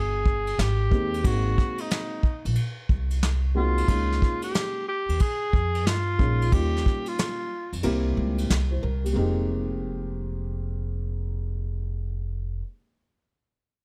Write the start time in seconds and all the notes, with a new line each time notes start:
Already playing: G1 G#4
0.26 kick
0.47 ride
0.58 G#1 G4, snare, hi-hat pedal, ride
0.91 D#2 G#3 A#3 C4 D#4 G4, kick
1.14 ride
1.23 G#1 G#3 A#3 C4 D#4 F#4, kick, ride
1.58 kick, snare
1.78 D#4, ride
1.90 snare, hi-hat pedal, ride
2.23 kick
2.45 A#1, ride
2.55 ride
2.89 C2, kick
3.10 ride
3.23 snare, hi-hat pedal, ride
3.55 G#3 A#3 C4 D#4 F4 F#4
3.78 ride
3.88 C#2 G#3 A#3 C#4 D#4 F4, kick, ride
4.12 snare
4.22 kick, snare
4.42 G4, ride
4.54 snare, hi-hat pedal, ride
4.88 G4
5.09 D#2, ride
5.19 G#4, kick, ride
5.53 F2, kick
5.75 ride
5.86 G2 F4, snare, hi-hat pedal, ride
6.18 A#1 G#3 A#3 C#4 D#4 F4, kick
6.42 ride
6.52 D#2 G3 A#3 C#4 D#4 F4 G4, kick, ride
6.77 snare
6.86 kick, snare
7.06 F4, ride
7.18 snare, hi-hat pedal, ride
7.73 F2, ride
7.83 C2 G3 A#3 C4 E4 G4, ride
8.17 C#2
8.38 ride
8.50 C2, snare, hi-hat pedal, ride
8.71 E4 C5
8.83 C2 A#4
9.04 A#3 G4, ride
9.13 F1 G#3 A#3 C4
9.18 D#4 G4